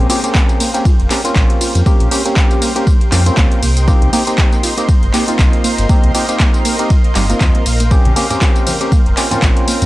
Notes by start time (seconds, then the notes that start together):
Already playing: G4 A#4 F5 G5 A#5 C6
0.09 A#3 C4 C#4 F4 G4, open hi-hat, ride, tambourine
0.23 A#3 C4 C#4 G4 C6, closed hi-hat, tambourine
0.35 A#3, kick, clap, ride, tambourine
0.49 closed hi-hat, tambourine
0.60 A#3, open hi-hat, ride, tambourine
0.74 A#3 C4 C#4 G4, closed hi-hat, tambourine
0.85 F4, kick, ride, tambourine
1.00 F1, closed hi-hat
1.10 A#3 C4 C#4 G4, clap, open hi-hat, ride, tambourine
1.24 A#3 C4 C#4 F4, closed hi-hat, tambourine
1.36 A#1 A#3, kick, clap, ride, tambourine
1.50 closed hi-hat
1.61 F4, open hi-hat, ride, tambourine
1.75 F2, closed hi-hat, tambourine
1.86 A#3 C4 C#4 G4, kick, ride, tambourine
2.00 A#1, closed hi-hat
2.11 A#3 C4 C#4 G4, open hi-hat, ride, tambourine
2.25 A#3 C4 C#4 G4, closed hi-hat, tambourine
2.37 F4, kick, clap, ride, tambourine
2.51 closed hi-hat, tambourine
2.62 A#3, open hi-hat, ride, tambourine
2.76 A#3 C4 C#4 G4, closed hi-hat, tambourine
2.87 A#3, kick, ride, tambourine
3.01 closed hi-hat
3.12 F2 A#3 C4 C#4 F4 G4, clap, open hi-hat, ride, tambourine
3.26 A#3 C4 C#4 F4, closed hi-hat, tambourine
3.37 C#2 A#3, kick, clap, ride, tambourine
3.52 closed hi-hat
3.62 C2 A#3 A#4 C5 D#5, open hi-hat, ride, tambourine
3.77 closed hi-hat, tambourine
3.86 A#3 C4 D#4 F4 G4 D#5, kick, ride, tambourine
4.02 C2, closed hi-hat
4.13 A#3 C4 D#4 G4, open hi-hat, ride, tambourine
4.27 A#3 C4 D#4 G4, closed hi-hat, tambourine
4.38 A#3, kick, clap, ride, tambourine
4.52 closed hi-hat, tambourine
4.63 F4, open hi-hat, ride, tambourine
4.77 A#3 C4 D#4 G4, closed hi-hat, tambourine
4.89 A#3, kick, ride, tambourine
5.03 G1, closed hi-hat
5.14 A#3 C4 D#4 G4, clap, open hi-hat, ride, tambourine
5.28 A#3 C4 D#4 F4, closed hi-hat, tambourine
5.39 C2 F4, kick, clap, ride, tambourine
5.53 closed hi-hat
5.64 A#3 F5, open hi-hat, ride, tambourine
5.78 G1, closed hi-hat, tambourine
5.89 A#3 C4 D#4 G4, kick, ride, tambourine
6.04 C2, closed hi-hat
6.14 A#3 C4 D#4 F4 G4, open hi-hat, ride, tambourine
6.29 A#3 C4 D#4 G4, closed hi-hat, tambourine
6.40 A#3, kick, clap, ride, tambourine
6.54 closed hi-hat, tambourine
6.65 A#3, open hi-hat, ride, tambourine
6.79 A#3 C4 D#4 G4, closed hi-hat, tambourine
6.90 F4, kick, ride, tambourine
7.04 closed hi-hat
7.15 G1 G3 A#3 C4 D#4 G4, clap, open hi-hat, ride, tambourine
7.29 A#3 C4 D#4 F4, closed hi-hat, tambourine
7.41 D#2 C4, kick, clap, ride, tambourine
7.55 A#3, closed hi-hat
7.66 A#1 A#3 G5, open hi-hat, ride, tambourine
7.80 A#3, closed hi-hat, tambourine
7.91 F3 A#3 C4 C#4 G4, kick, ride, tambourine
8.05 A#1, closed hi-hat, muted conga, high conga, low conga
8.16 A#3 C4 C#4 G4, open hi-hat, ride, tambourine
8.30 A#3 C4 C#4 G4, closed hi-hat, tambourine, low conga
8.42 F4, kick, clap, ride, tambourine, muted conga
8.56 closed hi-hat, tambourine
8.67 F3, open hi-hat, ride, tambourine, high conga
8.81 A#3 C4 C#4 G4, closed hi-hat, tambourine
8.92 A#3, kick, ride, tambourine, muted conga
9.06 F1, closed hi-hat
9.17 A#3 C4 C#4 F4 G4, clap, open hi-hat, ride, tambourine
9.31 A#3 C4 C#4 F4, closed hi-hat, tambourine, muted conga, high conga, low conga
9.42 A#1 F3, kick, clap, ride, tambourine
9.57 closed hi-hat
9.68 A#3 A#5, open hi-hat, ride, tambourine
9.82 F2, closed hi-hat, tambourine, muted conga